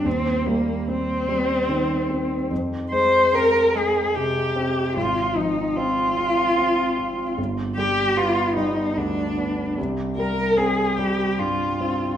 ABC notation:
X:1
M:3/4
L:1/8
Q:1/4=74
K:Cm
V:1 name="Cello"
C B, C4 | z c B A G2 | F E F4 | z G F E D2 |
z B A G F2 |]
V:2 name="Grand piano" clef=bass
E,, G, C G, E, C | F,, A, C A, C, C | A,,, F, C F C F | G,,, G, =B, G, D,, B, |
C,, G, C G, G,, C |]